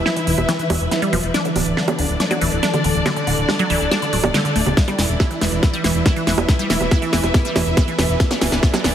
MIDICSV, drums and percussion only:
0, 0, Header, 1, 2, 480
1, 0, Start_track
1, 0, Tempo, 428571
1, 1504, Time_signature, 4, 2, 24, 8
1, 10021, End_track
2, 0, Start_track
2, 0, Title_t, "Drums"
2, 64, Note_on_c, 9, 38, 56
2, 176, Note_off_c, 9, 38, 0
2, 184, Note_on_c, 9, 42, 52
2, 296, Note_off_c, 9, 42, 0
2, 304, Note_on_c, 9, 46, 97
2, 416, Note_off_c, 9, 46, 0
2, 424, Note_on_c, 9, 42, 53
2, 424, Note_on_c, 9, 60, 38
2, 536, Note_off_c, 9, 42, 0
2, 536, Note_off_c, 9, 60, 0
2, 544, Note_on_c, 9, 38, 57
2, 544, Note_on_c, 9, 42, 85
2, 656, Note_off_c, 9, 38, 0
2, 656, Note_off_c, 9, 42, 0
2, 664, Note_on_c, 9, 42, 53
2, 776, Note_off_c, 9, 42, 0
2, 784, Note_on_c, 9, 46, 110
2, 784, Note_on_c, 9, 60, 76
2, 896, Note_off_c, 9, 46, 0
2, 896, Note_off_c, 9, 60, 0
2, 904, Note_on_c, 9, 42, 52
2, 1016, Note_off_c, 9, 42, 0
2, 1024, Note_on_c, 9, 38, 57
2, 1024, Note_on_c, 9, 42, 80
2, 1136, Note_off_c, 9, 38, 0
2, 1136, Note_off_c, 9, 42, 0
2, 1144, Note_on_c, 9, 42, 52
2, 1256, Note_off_c, 9, 42, 0
2, 1264, Note_on_c, 9, 46, 96
2, 1264, Note_on_c, 9, 60, 37
2, 1376, Note_off_c, 9, 46, 0
2, 1376, Note_off_c, 9, 60, 0
2, 1384, Note_on_c, 9, 42, 51
2, 1496, Note_off_c, 9, 42, 0
2, 1504, Note_on_c, 9, 38, 58
2, 1504, Note_on_c, 9, 42, 75
2, 1616, Note_off_c, 9, 38, 0
2, 1616, Note_off_c, 9, 42, 0
2, 1624, Note_on_c, 9, 42, 50
2, 1736, Note_off_c, 9, 42, 0
2, 1744, Note_on_c, 9, 46, 109
2, 1744, Note_on_c, 9, 60, 35
2, 1856, Note_off_c, 9, 46, 0
2, 1856, Note_off_c, 9, 60, 0
2, 1864, Note_on_c, 9, 42, 51
2, 1976, Note_off_c, 9, 42, 0
2, 1984, Note_on_c, 9, 38, 62
2, 2096, Note_off_c, 9, 38, 0
2, 2104, Note_on_c, 9, 42, 51
2, 2104, Note_on_c, 9, 60, 75
2, 2216, Note_off_c, 9, 42, 0
2, 2216, Note_off_c, 9, 60, 0
2, 2224, Note_on_c, 9, 46, 98
2, 2336, Note_off_c, 9, 46, 0
2, 2344, Note_on_c, 9, 42, 51
2, 2456, Note_off_c, 9, 42, 0
2, 2464, Note_on_c, 9, 38, 64
2, 2464, Note_on_c, 9, 42, 80
2, 2576, Note_off_c, 9, 38, 0
2, 2576, Note_off_c, 9, 42, 0
2, 2584, Note_on_c, 9, 42, 52
2, 2584, Note_on_c, 9, 60, 37
2, 2696, Note_off_c, 9, 42, 0
2, 2696, Note_off_c, 9, 60, 0
2, 2704, Note_on_c, 9, 46, 110
2, 2816, Note_off_c, 9, 46, 0
2, 2824, Note_on_c, 9, 42, 52
2, 2936, Note_off_c, 9, 42, 0
2, 2944, Note_on_c, 9, 38, 66
2, 2944, Note_on_c, 9, 42, 75
2, 3056, Note_off_c, 9, 38, 0
2, 3056, Note_off_c, 9, 42, 0
2, 3064, Note_on_c, 9, 42, 50
2, 3064, Note_on_c, 9, 60, 35
2, 3176, Note_off_c, 9, 42, 0
2, 3176, Note_off_c, 9, 60, 0
2, 3184, Note_on_c, 9, 46, 100
2, 3296, Note_off_c, 9, 46, 0
2, 3304, Note_on_c, 9, 42, 48
2, 3416, Note_off_c, 9, 42, 0
2, 3424, Note_on_c, 9, 38, 64
2, 3424, Note_on_c, 9, 42, 73
2, 3424, Note_on_c, 9, 60, 75
2, 3536, Note_off_c, 9, 38, 0
2, 3536, Note_off_c, 9, 42, 0
2, 3536, Note_off_c, 9, 60, 0
2, 3544, Note_on_c, 9, 42, 50
2, 3656, Note_off_c, 9, 42, 0
2, 3664, Note_on_c, 9, 46, 104
2, 3776, Note_off_c, 9, 46, 0
2, 3784, Note_on_c, 9, 42, 51
2, 3896, Note_off_c, 9, 42, 0
2, 3904, Note_on_c, 9, 38, 70
2, 3904, Note_on_c, 9, 60, 40
2, 4016, Note_off_c, 9, 38, 0
2, 4016, Note_off_c, 9, 60, 0
2, 4024, Note_on_c, 9, 42, 49
2, 4136, Note_off_c, 9, 42, 0
2, 4144, Note_on_c, 9, 46, 100
2, 4256, Note_off_c, 9, 46, 0
2, 4264, Note_on_c, 9, 42, 49
2, 4376, Note_off_c, 9, 42, 0
2, 4384, Note_on_c, 9, 38, 72
2, 4384, Note_on_c, 9, 42, 80
2, 4384, Note_on_c, 9, 60, 40
2, 4496, Note_off_c, 9, 38, 0
2, 4496, Note_off_c, 9, 42, 0
2, 4496, Note_off_c, 9, 60, 0
2, 4504, Note_on_c, 9, 42, 51
2, 4616, Note_off_c, 9, 42, 0
2, 4624, Note_on_c, 9, 46, 113
2, 4736, Note_off_c, 9, 46, 0
2, 4744, Note_on_c, 9, 42, 50
2, 4744, Note_on_c, 9, 60, 76
2, 4856, Note_off_c, 9, 42, 0
2, 4856, Note_off_c, 9, 60, 0
2, 4864, Note_on_c, 9, 38, 74
2, 4864, Note_on_c, 9, 42, 72
2, 4976, Note_off_c, 9, 38, 0
2, 4976, Note_off_c, 9, 42, 0
2, 4984, Note_on_c, 9, 42, 49
2, 5096, Note_off_c, 9, 42, 0
2, 5104, Note_on_c, 9, 46, 98
2, 5216, Note_off_c, 9, 46, 0
2, 5224, Note_on_c, 9, 42, 50
2, 5224, Note_on_c, 9, 60, 38
2, 5336, Note_off_c, 9, 42, 0
2, 5336, Note_off_c, 9, 60, 0
2, 5344, Note_on_c, 9, 36, 122
2, 5344, Note_on_c, 9, 38, 76
2, 5344, Note_on_c, 9, 42, 78
2, 5456, Note_off_c, 9, 36, 0
2, 5456, Note_off_c, 9, 38, 0
2, 5456, Note_off_c, 9, 42, 0
2, 5464, Note_on_c, 9, 42, 53
2, 5464, Note_on_c, 9, 60, 41
2, 5576, Note_off_c, 9, 42, 0
2, 5576, Note_off_c, 9, 60, 0
2, 5584, Note_on_c, 9, 38, 73
2, 5584, Note_on_c, 9, 46, 108
2, 5696, Note_off_c, 9, 38, 0
2, 5696, Note_off_c, 9, 46, 0
2, 5704, Note_on_c, 9, 42, 51
2, 5816, Note_off_c, 9, 42, 0
2, 5824, Note_on_c, 9, 36, 117
2, 5824, Note_on_c, 9, 38, 79
2, 5824, Note_on_c, 9, 60, 83
2, 5936, Note_off_c, 9, 36, 0
2, 5936, Note_off_c, 9, 38, 0
2, 5936, Note_off_c, 9, 60, 0
2, 5943, Note_on_c, 9, 42, 51
2, 6055, Note_off_c, 9, 42, 0
2, 6064, Note_on_c, 9, 38, 77
2, 6064, Note_on_c, 9, 46, 94
2, 6176, Note_off_c, 9, 38, 0
2, 6176, Note_off_c, 9, 46, 0
2, 6183, Note_on_c, 9, 42, 50
2, 6295, Note_off_c, 9, 42, 0
2, 6304, Note_on_c, 9, 36, 122
2, 6304, Note_on_c, 9, 38, 81
2, 6304, Note_on_c, 9, 42, 77
2, 6304, Note_on_c, 9, 60, 41
2, 6416, Note_off_c, 9, 36, 0
2, 6416, Note_off_c, 9, 38, 0
2, 6416, Note_off_c, 9, 42, 0
2, 6416, Note_off_c, 9, 60, 0
2, 6423, Note_on_c, 9, 42, 52
2, 6535, Note_off_c, 9, 42, 0
2, 6544, Note_on_c, 9, 38, 78
2, 6544, Note_on_c, 9, 46, 108
2, 6656, Note_off_c, 9, 38, 0
2, 6656, Note_off_c, 9, 46, 0
2, 6664, Note_on_c, 9, 42, 49
2, 6776, Note_off_c, 9, 42, 0
2, 6784, Note_on_c, 9, 36, 117
2, 6784, Note_on_c, 9, 38, 78
2, 6784, Note_on_c, 9, 42, 76
2, 6784, Note_on_c, 9, 60, 41
2, 6896, Note_off_c, 9, 36, 0
2, 6896, Note_off_c, 9, 38, 0
2, 6896, Note_off_c, 9, 42, 0
2, 6896, Note_off_c, 9, 60, 0
2, 6903, Note_on_c, 9, 42, 50
2, 7015, Note_off_c, 9, 42, 0
2, 7023, Note_on_c, 9, 38, 82
2, 7023, Note_on_c, 9, 46, 91
2, 7135, Note_off_c, 9, 38, 0
2, 7135, Note_off_c, 9, 46, 0
2, 7144, Note_on_c, 9, 42, 49
2, 7144, Note_on_c, 9, 60, 81
2, 7256, Note_off_c, 9, 42, 0
2, 7256, Note_off_c, 9, 60, 0
2, 7264, Note_on_c, 9, 36, 122
2, 7264, Note_on_c, 9, 38, 82
2, 7264, Note_on_c, 9, 42, 76
2, 7376, Note_off_c, 9, 36, 0
2, 7376, Note_off_c, 9, 38, 0
2, 7376, Note_off_c, 9, 42, 0
2, 7384, Note_on_c, 9, 42, 53
2, 7496, Note_off_c, 9, 42, 0
2, 7504, Note_on_c, 9, 38, 81
2, 7504, Note_on_c, 9, 46, 98
2, 7616, Note_off_c, 9, 38, 0
2, 7616, Note_off_c, 9, 46, 0
2, 7624, Note_on_c, 9, 42, 52
2, 7624, Note_on_c, 9, 60, 41
2, 7736, Note_off_c, 9, 42, 0
2, 7736, Note_off_c, 9, 60, 0
2, 7743, Note_on_c, 9, 38, 89
2, 7744, Note_on_c, 9, 36, 114
2, 7855, Note_off_c, 9, 38, 0
2, 7856, Note_off_c, 9, 36, 0
2, 7863, Note_on_c, 9, 42, 53
2, 7975, Note_off_c, 9, 42, 0
2, 7983, Note_on_c, 9, 38, 88
2, 7983, Note_on_c, 9, 46, 90
2, 8095, Note_off_c, 9, 38, 0
2, 8095, Note_off_c, 9, 46, 0
2, 8104, Note_on_c, 9, 42, 53
2, 8104, Note_on_c, 9, 60, 40
2, 8216, Note_off_c, 9, 42, 0
2, 8216, Note_off_c, 9, 60, 0
2, 8224, Note_on_c, 9, 36, 115
2, 8224, Note_on_c, 9, 38, 94
2, 8224, Note_on_c, 9, 42, 83
2, 8336, Note_off_c, 9, 36, 0
2, 8336, Note_off_c, 9, 38, 0
2, 8336, Note_off_c, 9, 42, 0
2, 8344, Note_on_c, 9, 42, 56
2, 8456, Note_off_c, 9, 42, 0
2, 8464, Note_on_c, 9, 38, 91
2, 8464, Note_on_c, 9, 46, 107
2, 8464, Note_on_c, 9, 60, 83
2, 8576, Note_off_c, 9, 38, 0
2, 8576, Note_off_c, 9, 46, 0
2, 8576, Note_off_c, 9, 60, 0
2, 8584, Note_on_c, 9, 42, 54
2, 8696, Note_off_c, 9, 42, 0
2, 8704, Note_on_c, 9, 36, 114
2, 8704, Note_on_c, 9, 38, 89
2, 8704, Note_on_c, 9, 42, 77
2, 8816, Note_off_c, 9, 36, 0
2, 8816, Note_off_c, 9, 38, 0
2, 8816, Note_off_c, 9, 42, 0
2, 8824, Note_on_c, 9, 42, 52
2, 8936, Note_off_c, 9, 42, 0
2, 8944, Note_on_c, 9, 38, 91
2, 8944, Note_on_c, 9, 46, 88
2, 8944, Note_on_c, 9, 60, 42
2, 9056, Note_off_c, 9, 38, 0
2, 9056, Note_off_c, 9, 46, 0
2, 9056, Note_off_c, 9, 60, 0
2, 9064, Note_on_c, 9, 42, 52
2, 9176, Note_off_c, 9, 42, 0
2, 9184, Note_on_c, 9, 36, 114
2, 9184, Note_on_c, 9, 38, 96
2, 9184, Note_on_c, 9, 42, 82
2, 9296, Note_off_c, 9, 36, 0
2, 9296, Note_off_c, 9, 38, 0
2, 9296, Note_off_c, 9, 42, 0
2, 9304, Note_on_c, 9, 38, 83
2, 9304, Note_on_c, 9, 42, 56
2, 9416, Note_off_c, 9, 38, 0
2, 9416, Note_off_c, 9, 42, 0
2, 9424, Note_on_c, 9, 38, 94
2, 9424, Note_on_c, 9, 46, 98
2, 9424, Note_on_c, 9, 60, 41
2, 9536, Note_off_c, 9, 38, 0
2, 9536, Note_off_c, 9, 46, 0
2, 9536, Note_off_c, 9, 60, 0
2, 9544, Note_on_c, 9, 38, 83
2, 9544, Note_on_c, 9, 42, 54
2, 9656, Note_off_c, 9, 38, 0
2, 9656, Note_off_c, 9, 42, 0
2, 9664, Note_on_c, 9, 36, 117
2, 9664, Note_on_c, 9, 38, 98
2, 9776, Note_off_c, 9, 36, 0
2, 9776, Note_off_c, 9, 38, 0
2, 9784, Note_on_c, 9, 38, 80
2, 9784, Note_on_c, 9, 42, 55
2, 9784, Note_on_c, 9, 60, 84
2, 9896, Note_off_c, 9, 38, 0
2, 9896, Note_off_c, 9, 42, 0
2, 9896, Note_off_c, 9, 60, 0
2, 9904, Note_on_c, 9, 38, 102
2, 9904, Note_on_c, 9, 46, 88
2, 10016, Note_off_c, 9, 38, 0
2, 10016, Note_off_c, 9, 46, 0
2, 10021, End_track
0, 0, End_of_file